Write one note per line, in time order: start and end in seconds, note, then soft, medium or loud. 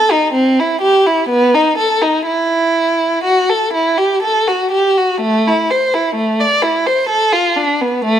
0.00 0.11 A4 medium
0.12 0.35 D#4 medium
0.33 0.57 C4 medium
0.60 0.82 E4 soft
0.82 1.05 G4 soft
1.06 1.29 E4 soft
1.30 1.53 B3 medium
1.55 1.78 D#4 soft
1.78 2.01 A4 soft
2.02 2.26 D#4 soft
2.26 3.23 E4 medium
3.24 3.49 F#4 soft
3.50 3.74 A4 soft
3.74 3.98 E4 soft
3.98 4.23 G4 soft
4.23 4.47 A4 soft
4.47 4.73 F#4 soft
4.72 4.97 G4 soft
4.98 5.22 F#4 soft
5.21 5.44 A3 medium
5.48 5.70 E4 soft
5.70 5.93 C5 soft
5.94 6.17 E4 soft
6.16 6.39 A3 soft
6.40 6.63 D5 soft
6.63 6.86 E4 soft
6.87 7.10 C5 soft
7.10 7.33 A4 medium
7.33 7.57 F4 soft
7.57 7.81 D4 soft
7.81 8.06 B3 soft
8.05 8.20 A3 medium